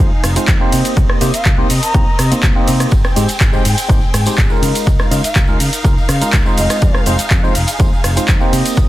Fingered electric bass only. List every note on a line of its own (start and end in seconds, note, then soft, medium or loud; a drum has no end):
0.00 0.11 F2 medium
0.12 muted fingered electric bass stroke soft
0.23 0.36 F1 loud
0.36 muted fingered electric bass stroke soft
0.48 0.57 F2 loud
0.73 0.81 C3 medium
0.97 1.05 C2 loud
1.21 1.30 C3 loud
1.34 muted fingered electric bass stroke soft
1.46 1.62 C2 medium
1.70 1.79 C3 medium
1.94 2.03 C2 medium
2.07 muted fingered electric bass stroke soft
2.19 2.31 C3 medium
2.32 muted fingered electric bass stroke soft
2.43 2.52 C2 loud
2.68 2.85 C3 loud
2.92 3.00 G#1 loud
3.17 3.25 G#2 loud
3.29 muted fingered electric bass stroke soft
3.41 3.57 G#1 medium
3.65 3.74 G#2 medium
3.89 4.02 G#1 medium
4.02 muted fingered electric bass stroke soft
4.14 4.26 G#2 loud
4.27 muted fingered electric bass stroke soft
4.38 4.47 G#1 loud
4.62 4.71 C#3 loud
4.87 4.96 C#2 loud
5.00 muted fingered electric bass stroke soft
5.11 5.20 C#3 loud
5.24 muted fingered electric bass stroke soft
5.36 5.53 C#2 loud
5.60 5.69 C#3 medium
5.85 5.96 C#2 medium
5.97 muted fingered electric bass stroke soft
6.09 6.21 C#3 loud
6.22 muted fingered electric bass stroke soft
6.33 6.42 C#2 loud
6.58 6.66 F1 loud
6.82 6.91 F2 loud
7.07 7.15 F1 loud
7.20 muted fingered electric bass stroke soft
7.31 7.48 F2 loud
7.56 7.64 F1 medium
7.80 7.92 F2 medium
7.93 muted fingered electric bass stroke soft
8.04 8.16 F1 loud
8.17 muted fingered electric bass stroke soft
8.29 8.37 F2 loud
8.53 8.61 C3 loud
8.77 8.86 C2 loud